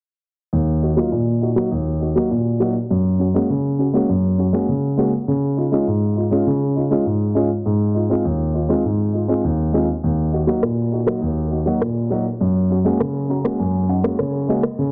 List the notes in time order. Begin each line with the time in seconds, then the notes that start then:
0.53 D#2
0.82 D#4 F#4
0.97 F#3 A#3 D#4 F4
1.12 A#2
1.41 D#4 F#4
1.56 F#3 A#3 D#4 F#4
1.72 D#2
2.00 D#4 F#4
2.16 F#3 A#3 D#4 F#4
2.31 A#2
2.60 F#3 A#3 D#4 F#4
2.90 F#2
3.19 C#4 F#4
3.34 G#3 A#3 C#4 F#4
3.50 C#3
3.79 C#4 F#4
3.93 G#3 A#3 C#4 F#4
4.09 F#2
4.38 C#4 F#4
4.53 G#3 A#3 C#4 F#4
4.69 C#3
4.97 G#3 A#3 C#4 F#4
5.28 C#3
5.57 D#4 F4
5.72 G#3 C#4 D#4 F4
5.87 G#2
6.16 D#4 F4
6.31 G#3 C#4 D#4 F4
6.47 C#3
6.76 D#4 F4
6.91 G#3 C#4 D#4 F4
7.06 G#2
7.35 G#3 C#4 D#4 F4
7.66 G#2
7.94 D#4 F4
8.10 G#3 C4 D#4 F4
8.25 D#2
8.54 D#4 F4
8.69 G#3 C4 D#4 F4
8.84 G#2
9.13 D#4 F4
9.28 G#3 C4 D#4 F4
9.44 D#2
9.73 G#3 C4 D#4 F4
10.04 D#2
10.32 D#4 F#4
10.47 F#3 A#3 D#4 F#4
10.63 A#2, cross-stick
10.92 D#4 F#4
11.06 F#3 A#3 D#4 F#4, cross-stick
11.22 D#2
11.51 D#4 F#4
11.66 F#3 A#3 D#4 F#4
11.81 A#2, cross-stick
12.10 F#3 A#3 D#4 F#4
12.41 F#2
12.70 C#4 F#4
12.85 G#3 A#3 C#4 F#4
13.00 C#3, cross-stick
13.29 C#4 F#4 A#5
13.44 G#3 A#3 C#4 F#4, cross-stick
13.60 F#2 G#5
13.89 C#4 D#4 F#5
14.03 G#3 A#3 C#4 F#4, cross-stick
14.19 C#3 C#5, cross-stick
14.48 G#3 A#3 C#4 F#4 D#5
14.63 cross-stick
14.78 C#3